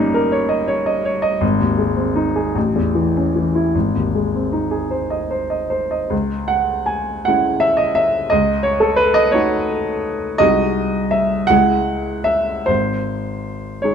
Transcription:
0.00 1.38 G2 medium
0.00 1.45 G3 medium
0.00 1.45 A#3 medium
0.00 1.45 C#4 medium
0.00 0.26 D#4 medium
0.14 0.43 A#4 medium
0.32 0.61 C#5 medium
0.49 0.78 D#5 medium
0.68 0.97 C#5 medium
0.86 1.16 D#5 medium
1.05 1.35 C#5 medium
1.22 1.41 D#5 medium
1.41 2.51 G#1 medium
1.60 1.91 D#2 medium
1.78 2.09 G#3 medium
1.96 2.27 C4 soft
2.15 2.47 D#4 medium
2.36 2.55 G#4 medium
2.55 3.70 A1 medium
2.75 3.06 E2 medium
2.95 3.26 E3 soft
3.17 3.47 C#4 soft
3.36 3.67 E3 medium
3.55 3.75 E4 medium
3.75 6.08 G#1 medium
3.95 4.26 D#2 soft
4.15 4.46 G#3 soft
4.35 4.65 C4 soft
4.53 4.84 D#4 soft
4.71 5.03 G#4 medium
4.91 5.23 C5 soft
5.10 5.43 D#5 medium
5.31 5.63 C5 medium
5.50 5.83 D#5 soft
5.70 6.03 C5 medium
5.91 6.11 D#5 soft
6.10 7.22 C#2 medium
6.48 6.87 F#5 medium
6.86 7.25 G#5 medium
7.25 8.27 G#3 soft
7.25 8.28 C#4 soft
7.25 8.28 E4 soft
7.25 7.62 F#5 medium
7.60 7.78 E5 medium
7.77 7.95 D#5 medium
7.95 8.30 E5 medium
8.30 9.32 C#2 medium
8.30 8.65 D#5 medium
8.63 8.81 C#5 medium
8.80 8.99 A4 medium
8.96 9.16 B4 medium
9.14 9.33 D#5 medium
9.31 10.35 A3 soft
9.31 10.35 D#4 soft
9.31 10.35 F#4 medium
9.31 10.38 C#5 medium
10.38 11.47 C2 medium
10.38 11.46 G#3 medium
10.38 11.46 D#4 soft
10.38 11.47 F#4 soft
10.38 11.12 D#5 loud
11.11 11.49 E5 medium
11.47 12.64 C#2 medium
11.47 12.64 G#3 soft
11.47 12.64 E4 soft
11.47 12.64 G#4 soft
11.47 12.26 F#5 loud
12.24 12.67 E5 medium
12.66 13.80 G#1 medium
12.66 13.83 C5 medium
13.82 13.95 G#3 soft
13.82 13.95 D#4 soft
13.82 13.95 G#4 soft
13.82 13.95 C#5 medium

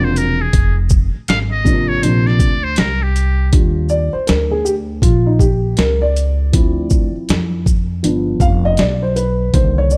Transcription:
0.00 0.50 E1 medium
0.00 0.35 C3 medium
0.00 0.35 F3 medium
0.00 0.35 A#3 medium
0.00 0.35 C4 medium
0.04 0.19 C5 medium
0.16 0.43 A#4 medium
0.16 closed hi-hat medium
0.16 shaker soft
0.42 0.78 G#4 medium
0.53 1.12 F1 loud
0.53 kick loud
0.53 closed hi-hat medium
0.89 kick loud
0.89 shaker medium
1.15 muted upright bass stroke medium
1.28 2.00 G#1 medium
1.28 1.40 F5 medium
1.28 snare loud
1.28 closed hi-hat medium
1.52 1.90 D#5 loud
1.64 1.95 C3 medium
1.64 1.95 F3 medium
1.64 1.95 A#3 medium
1.64 1.95 D4 medium
1.64 kick loud
1.64 shaker medium
1.88 2.05 C#5 medium
2.02 2.39 A#1 loud
2.02 2.50 C3 medium
2.02 2.50 F3 medium
2.02 2.50 A#3 medium
2.02 2.51 D4 medium
2.02 2.28 C5 medium
2.02 closed hi-hat medium
2.27 2.65 D5 loud
2.27 snare soft
2.39 2.76 D2 medium
2.39 kick medium
2.39 closed hi-hat medium
2.39 shaker medium
2.64 2.81 C5 loud
2.76 3.50 C2 medium
2.76 3.04 A#4 medium
2.76 snare loud
2.76 closed hi-hat medium
3.03 3.54 G4 medium
3.16 closed hi-hat medium
3.16 shaker soft
3.52 4.12 D#2 loud
3.52 4.06 G3 medium
3.52 4.07 D4 soft
3.52 4.07 F4 medium
3.52 kick loud
3.52 closed hi-hat medium
3.89 4.15 D5 loud
3.89 shaker medium
4.13 4.27 C5 medium
4.13 muted upright bass stroke soft
4.27 5.00 D2 medium
4.27 4.52 A#4 medium
4.27 snare loud
4.27 closed hi-hat medium
4.51 4.65 G#4 medium
4.65 4.73 G4 medium
4.65 shaker medium
5.02 5.74 A#1 medium
5.02 5.28 F4 medium
5.02 kick medium
5.02 closed hi-hat medium
5.27 5.41 D#4 medium
5.39 5.79 G4 medium
5.39 kick medium
5.39 shaker medium
5.77 6.50 C#2 medium
5.77 6.03 A#4 medium
5.77 snare loud
5.77 closed hi-hat medium
6.02 7.11 D5 medium
6.16 closed hi-hat medium
6.16 shaker soft
6.52 7.12 D2 loud
6.52 7.62 F3 medium
6.52 7.62 C4 medium
6.52 7.62 E4 medium
6.52 kick loud
6.52 closed hi-hat medium
6.90 kick medium
6.90 shaker medium
7.15 muted upright bass stroke soft
7.29 8.00 F2 medium
7.29 snare loud
7.29 closed hi-hat medium
7.66 kick medium
7.66 shaker medium
8.03 8.39 G1 medium
8.03 9.12 F3 medium
8.03 9.12 B3 medium
8.03 9.12 D4 medium
8.03 closed hi-hat medium
8.40 8.76 F1 loud
8.40 8.46 F5 loud
8.40 kick medium
8.40 shaker medium
8.65 8.79 D#5 loud
8.77 9.50 B1 loud
8.77 9.03 D5 loud
8.77 snare loud
8.77 closed hi-hat medium
9.02 9.15 C5 medium
9.16 9.55 B4 medium
9.16 closed hi-hat medium
9.16 shaker soft
9.53 9.97 C2 loud
9.53 9.97 D3 medium
9.53 9.97 D#3 medium
9.53 9.97 A#3 soft
9.53 9.78 C5 loud
9.53 kick loud
9.53 closed hi-hat medium
9.78 9.92 C#5 loud
9.90 9.97 D5 medium
9.90 shaker medium

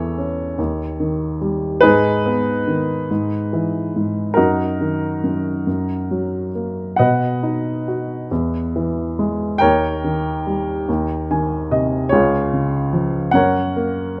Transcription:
0.00 0.55 E2 soft
0.00 0.56 E3 soft
0.00 1.37 A4 medium
0.00 1.36 C#5 medium
0.18 0.58 C#4 soft
0.58 1.79 D#2 soft
1.00 1.81 D#3 medium
1.41 1.82 G3 soft
1.81 3.07 G#2 medium
1.81 4.33 D#4 medium
1.81 4.33 G#4 medium
1.81 4.44 B4 loud
2.26 3.08 B3 soft
2.68 3.09 D#3 soft
3.11 3.94 G#2 medium
3.53 4.35 E3 soft
3.96 4.37 G#2 soft
4.34 6.50 D#4 medium
4.34 6.50 F#4 medium
4.34 6.49 A#4 medium
4.38 5.22 F#2 medium
4.81 5.65 D#3 soft
5.24 5.65 F#2 soft
5.67 6.94 F#2 soft
6.11 6.96 F#3 soft
6.55 6.98 A#3 soft
6.96 8.27 B2 medium
6.96 9.57 B4 medium
6.96 9.57 D#5 medium
6.96 9.68 F#5 medium
7.43 8.28 D#4 soft
7.88 8.30 F#4 soft
8.31 9.57 E2 medium
8.76 9.59 E3 soft
9.19 9.60 G#3 soft
9.58 10.86 D#2 medium
9.58 12.08 A#4 medium
9.58 12.08 C#5 medium
9.58 12.18 G5 medium
10.04 10.86 D#3 soft
10.47 10.87 G3 soft
10.89 12.08 D#2 medium
11.31 12.09 D#3 soft
11.31 11.69 G#5 medium
11.71 12.10 C3 soft
11.71 12.09 D#5 medium
12.09 13.31 C#2 medium
12.09 13.31 F4 medium
12.09 13.31 G#4 medium
12.09 13.33 C#5 medium
12.53 13.32 C#3 soft
12.93 13.33 F3 soft
13.31 14.20 F#2 medium
13.31 14.20 A#4 medium
13.31 14.20 C#5 medium
13.31 14.20 F#5 medium
13.76 14.20 A#3 medium

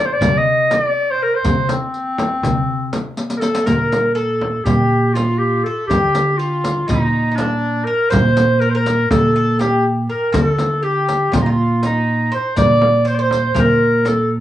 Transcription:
0.00 0.17 C3 loud
0.05 0.15 C5 medium
0.14 0.39 D5 loud
0.21 1.16 C3 medium
0.21 riq medium
0.21 frame drum medium
0.21 darbuka dum loud
0.38 0.74 D#5 loud
0.71 0.85 D#5 loud
0.71 riq medium
0.71 darbuka tek medium
0.71 frame drum medium
0.85 1.12 D5 loud
1.11 1.24 C5 loud
1.22 1.36 A#4 medium
1.35 1.70 C5 loud
1.45 1.69 C3 loud
1.45 riq medium
1.45 darbuka dum medium
1.45 frame drum medium
1.69 3.07 C4 medium
1.69 riq soft
1.69 darbuka tek medium
1.69 frame drum medium
1.94 riq soft
1.94 darbuka ka soft
2.18 riq soft
2.18 darbuka tek medium
2.18 frame drum medium
2.43 3.39 C3 loud
2.43 riq medium
2.43 frame drum medium
2.43 darbuka dum medium
2.93 riq soft
2.93 darbuka tek medium
2.93 frame drum medium
3.17 riq medium
3.17 darbuka tek medium
3.30 riq medium
3.30 darbuka ka medium
3.37 3.68 A4 medium
3.37 3.42 A#4 medium
3.41 3.66 A4 medium
3.41 riq medium
3.41 darbuka tek medium
3.55 riq medium
3.55 darbuka ka medium
3.66 4.62 A#2 medium
3.66 4.15 A#4 medium
3.66 4.14 A#4 medium
3.66 riq medium
3.66 frame drum medium
3.66 darbuka dum medium
3.92 riq soft
3.92 darbuka tek medium
3.92 frame drum medium
4.15 4.66 A4 medium
4.15 4.65 A4 medium
4.15 riq soft
4.41 darbuka tek medium
4.41 frame drum medium
4.64 5.61 A#2 medium
4.64 5.15 G4 medium
4.64 5.17 G4 medium
4.64 riq medium
4.64 darbuka dum medium
4.64 frame drum medium
5.13 5.40 F4 medium
5.13 5.66 F4 medium
5.13 riq medium
5.13 darbuka tek medium
5.13 frame drum medium
5.38 5.65 G4 medium
5.64 5.86 A4 medium
5.64 5.90 A4 medium
5.87 6.85 D3 medium
5.87 6.39 G4 medium
5.87 riq medium
5.87 darbuka dum medium
5.87 frame drum medium
5.91 6.41 G4 medium
6.15 riq medium
6.15 darbuka tek medium
6.15 frame drum medium
6.37 6.88 F4 medium
6.37 6.87 F4 medium
6.37 riq soft
6.37 darbuka ka soft
6.64 riq soft
6.64 darbuka tek medium
6.64 frame drum medium
6.87 7.84 A#2 medium
6.87 7.38 D#4 medium
6.87 7.30 D#4 medium
6.87 riq medium
6.87 darbuka dum medium
6.87 frame drum medium
7.31 7.38 D#4 medium
7.36 7.86 D4 medium
7.36 7.87 D4 medium
7.36 riq medium
7.36 darbuka tek medium
7.36 frame drum medium
7.85 8.11 A#4 medium
7.85 8.10 A#4 medium
8.10 9.07 A#2 medium
8.10 8.61 C5 loud
8.10 8.61 C5 medium
8.10 riq medium
8.10 darbuka dum medium
8.10 frame drum loud
8.37 riq medium
8.37 darbuka tek medium
8.37 frame drum medium
8.60 8.71 A#4 medium
8.60 8.73 A#4 medium
8.60 riq soft
8.70 8.78 C5 medium
8.75 9.11 A#4 medium
8.75 9.10 A#4 loud
8.86 riq soft
8.86 darbuka tek medium
8.86 frame drum medium
9.11 10.06 A#2 medium
9.11 9.62 A4 loud
9.11 9.34 A4 medium
9.11 riq medium
9.11 frame drum medium
9.11 darbuka dum medium
9.36 9.59 A4 medium
9.59 9.83 G4 medium
9.59 9.85 G4 medium
9.59 riq soft
9.59 darbuka tek medium
9.59 frame drum medium
10.09 10.32 A#4 medium
10.09 10.36 A#4 medium
10.32 11.29 D3 loud
10.32 10.82 A4 medium
10.32 10.48 A#4 medium
10.32 riq medium
10.32 frame drum loud
10.32 darbuka dum medium
10.48 10.85 A4 medium
10.59 riq soft
10.59 darbuka tek medium
10.59 frame drum medium
10.83 11.34 G4 medium
10.83 11.35 G4 medium
10.83 darbuka ka soft
11.08 riq soft
11.08 darbuka tek medium
11.08 frame drum medium
11.32 12.29 A#2 medium
11.32 11.45 F4 medium
11.32 11.43 F4 medium
11.32 riq medium
11.32 darbuka dum medium
11.32 frame drum medium
11.42 11.51 D#4 medium
11.46 11.82 F4 medium
11.46 11.87 F4 medium
11.83 12.34 D#4 medium
11.83 12.36 D#4 medium
11.83 riq soft
11.83 darbuka tek medium
11.83 frame drum medium
12.32 12.56 C5 medium
12.32 12.57 C5 medium
12.32 riq soft
12.32 darbuka ka soft
12.56 13.52 A#2 medium
12.56 13.05 D5 medium
12.56 13.10 D5 loud
12.56 riq medium
12.56 darbuka dum medium
12.56 frame drum medium
12.81 darbuka tek medium
12.81 frame drum medium
13.05 13.18 C5 medium
13.05 13.16 C5 medium
13.05 riq soft
13.15 13.23 D5 medium
13.19 13.54 C5 medium
13.19 13.61 C5 loud
13.31 riq soft
13.31 darbuka tek medium
13.31 frame drum medium
13.54 14.40 A#2 medium
13.54 14.06 A#4 medium
13.54 riq medium
13.54 darbuka dum medium
13.54 frame drum medium
13.60 14.10 A#4 medium
14.05 14.28 A4 medium
14.05 14.32 A4 medium
14.05 riq soft
14.05 darbuka tek medium
14.05 frame drum medium

